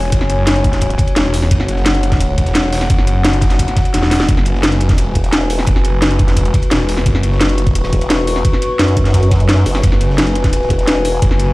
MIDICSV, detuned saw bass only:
0, 0, Header, 1, 2, 480
1, 0, Start_track
1, 0, Tempo, 346821
1, 172, Time_signature, 4, 2, 24, 8
1, 15960, End_track
2, 0, Start_track
2, 0, Title_t, "Detuned saw bass"
2, 0, Program_c, 0, 39
2, 0, Note_on_c, 0, 28, 96
2, 152, Note_off_c, 0, 28, 0
2, 171, Note_on_c, 0, 30, 100
2, 1352, Note_off_c, 0, 30, 0
2, 1612, Note_on_c, 0, 28, 99
2, 2072, Note_off_c, 0, 28, 0
2, 2091, Note_on_c, 0, 30, 102
2, 3272, Note_off_c, 0, 30, 0
2, 3292, Note_on_c, 0, 28, 95
2, 3992, Note_off_c, 0, 28, 0
2, 4013, Note_on_c, 0, 30, 100
2, 5193, Note_off_c, 0, 30, 0
2, 5453, Note_on_c, 0, 28, 103
2, 5913, Note_off_c, 0, 28, 0
2, 5932, Note_on_c, 0, 30, 99
2, 6762, Note_off_c, 0, 30, 0
2, 6762, Note_on_c, 0, 29, 99
2, 7112, Note_off_c, 0, 29, 0
2, 7851, Note_on_c, 0, 30, 102
2, 8682, Note_off_c, 0, 30, 0
2, 8682, Note_on_c, 0, 29, 102
2, 9032, Note_off_c, 0, 29, 0
2, 9292, Note_on_c, 0, 28, 99
2, 9752, Note_off_c, 0, 28, 0
2, 9772, Note_on_c, 0, 30, 97
2, 10952, Note_off_c, 0, 30, 0
2, 13611, Note_on_c, 0, 30, 106
2, 14792, Note_off_c, 0, 30, 0
2, 15532, Note_on_c, 0, 30, 104
2, 15960, Note_off_c, 0, 30, 0
2, 15960, End_track
0, 0, End_of_file